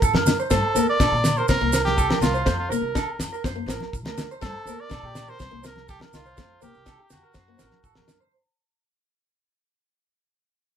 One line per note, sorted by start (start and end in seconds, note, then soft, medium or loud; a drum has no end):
0.02 0.15 A1 medium
0.02 0.14 A4 medium
0.02 kick loud
0.02 maracas medium
0.13 0.33 F#2 medium
0.13 0.38 A#4 medium
0.13 snare medium
0.13 high conga medium
0.13 low agogo medium
0.26 0.40 D4 medium
0.26 snare medium
0.26 low conga medium
0.26 maracas loud
0.39 0.50 C5 medium
0.39 maracas soft
0.51 0.61 G2 loud
0.51 0.64 A3 medium
0.51 0.85 A4 medium
0.51 0.75 C5 loud
0.51 kick loud
0.51 snare medium
0.51 low agogo medium
0.51 maracas medium
0.75 0.85 D2 medium
0.75 0.89 A#3 medium
0.75 0.99 A#4 medium
0.75 maracas loud
0.90 1.39 D5 loud
1.00 1.09 A#2 medium
1.00 1.13 D4 medium
1.00 1.12 A4 medium
1.00 kick medium
1.00 snare medium
1.00 low agogo medium
1.00 maracas medium
1.12 1.40 A#2 loud
1.12 muted clean electric guitar stroke medium
1.24 snare medium
1.24 low conga medium
1.24 low agogo medium
1.24 maracas loud
1.38 1.48 A#4 medium
1.38 1.48 C5 medium
1.48 1.59 C2 loud
1.48 1.56 C4 medium
1.48 1.83 A#4 loud
1.48 1.72 C5 medium
1.48 kick medium
1.48 snare medium
1.48 maracas medium
1.61 2.08 C2 medium
1.61 1.68 A#3 medium
1.73 1.97 A#4 medium
1.73 snare medium
1.73 low agogo medium
1.73 maracas loud
1.85 2.19 G4 loud
1.85 snare soft
1.85 high conga medium
1.98 2.09 A4 medium
1.98 kick medium
1.98 maracas medium
2.10 2.33 A#4 medium
2.10 snare medium
2.10 high conga medium
2.10 low agogo medium
2.21 2.40 C2 loud
2.21 2.35 C4 medium
2.21 2.56 F4 medium
2.21 snare medium
2.21 low conga medium
2.21 maracas medium
2.34 2.45 C5 medium
2.34 maracas soft
2.46 2.65 F2 loud
2.46 2.59 A3 loud
2.46 2.70 C5 medium
2.46 kick medium
2.46 snare medium
2.46 low agogo medium
2.46 maracas medium
2.59 2.72 F4 medium
2.70 2.80 C2 medium
2.70 2.84 A#3 medium
2.70 2.94 A#4 medium
2.70 3.20 A#4 medium
2.70 maracas medium
2.81 3.01 C2 medium
2.95 3.08 D4 medium
2.95 3.07 A4 medium
2.95 kick medium
2.95 snare medium
2.95 low agogo medium
2.95 maracas medium
3.19 3.29 F2 loud
3.19 snare medium
3.19 low agogo medium
3.19 maracas medium
3.33 3.44 A#4 medium
3.33 maracas soft
3.44 3.63 F#2 medium
3.44 3.51 C4 medium
3.44 3.68 C5 medium
3.44 kick medium
3.44 snare medium
3.44 maracas medium
3.56 3.62 A#3 medium
3.66 3.77 A1 loud
3.66 3.81 C4 medium
3.66 3.93 A#4 medium
3.66 snare medium
3.66 low agogo medium
3.66 maracas medium
3.80 snare soft
3.80 high conga medium
3.93 4.04 A1 medium
3.93 kick medium
3.93 maracas medium
4.04 4.23 D2 medium
4.04 4.29 A#4 medium
4.04 snare medium
4.04 high conga medium
4.04 low agogo medium
4.18 4.30 D4 medium
4.18 snare medium
4.18 low conga medium
4.18 maracas medium
4.31 4.42 C5 medium
4.31 maracas soft
4.41 4.52 G2 loud
4.41 4.54 A3 loud
4.41 4.82 A4 loud
4.41 4.66 C5 loud
4.41 kick medium
4.41 snare medium
4.41 low agogo medium
4.41 maracas medium
4.66 4.75 D2 medium
4.66 4.80 A#3 medium
4.66 4.91 A#4 medium
4.66 maracas medium
4.81 5.31 D5 loud
4.89 5.01 A#2 medium
4.89 5.03 D4 medium
4.89 5.03 A4 medium
4.89 kick loud
4.89 snare medium
4.89 low agogo medium
4.89 maracas medium
5.03 5.31 A#2 medium
5.03 5.27 G4 medium
5.15 snare medium
5.15 low conga medium
5.15 low agogo medium
5.15 maracas medium
5.27 5.40 A#4 medium
5.27 5.65 C5 loud
5.27 maracas soft
5.39 5.49 C2 loud
5.39 5.46 C4 medium
5.39 5.63 C5 medium
5.39 kick medium
5.39 snare medium
5.39 maracas medium
5.51 5.99 C2 medium
5.51 5.58 A#3 medium
5.64 5.78 C4 medium
5.64 5.87 A#4 medium
5.64 5.89 A#4 medium
5.64 snare medium
5.64 low agogo medium
5.64 maracas loud
5.76 snare soft
5.76 high conga medium
5.88 6.01 G4 loud
5.88 6.00 A4 medium
5.88 kick loud
5.88 maracas medium
6.00 6.24 A#4 medium
6.00 snare medium
6.00 high conga medium
6.00 low agogo medium
6.13 6.32 C2 medium
6.13 6.27 D#4 medium
6.13 6.60 F4 loud
6.13 snare medium
6.13 low conga medium
6.13 maracas medium
6.25 6.36 C5 medium
6.25 maracas soft
6.37 6.56 F2 loud
6.37 6.51 A3 medium
6.37 6.61 C5 loud
6.37 kick medium
6.37 snare medium
6.37 low agogo medium
6.37 maracas medium
6.61 6.72 C2 medium
6.61 6.75 A#3 medium
6.61 7.13 G4 loud
6.61 6.85 A#4 medium
6.61 high conga medium
6.61 maracas medium
6.74 6.93 C2 medium
6.74 maracas soft
6.86 6.99 D4 medium
6.86 6.98 A4 medium
6.86 kick medium
6.86 snare medium
6.86 low agogo medium
6.86 maracas medium
6.99 7.22 G4 medium
7.10 7.20 F2 medium
7.10 8.09 F#4 loud
7.10 snare medium
7.10 low conga medium
7.10 low agogo medium
7.10 maracas loud
7.23 7.34 A#4 medium
7.34 7.54 F#2 medium
7.34 7.41 A3 medium
7.34 7.58 C5 medium
7.34 kick medium
7.34 snare medium
7.34 maracas medium
7.48 7.54 A#3 medium
7.59 7.70 A1 loud
7.59 7.72 C4 medium
7.59 7.83 A#4 medium
7.59 snare medium
7.59 low agogo medium
7.59 maracas loud
7.71 snare soft
7.71 high conga medium
7.84 7.98 A1 medium
7.84 7.96 A4 medium
7.84 kick medium
7.84 maracas medium
7.95 8.15 F#2 medium
7.95 8.20 A#4 medium
7.95 snare medium
7.95 high conga medium
7.95 low agogo medium
8.08 8.21 D4 medium
8.08 snare medium
8.08 low conga medium
8.08 maracas medium
8.20 8.32 C5 medium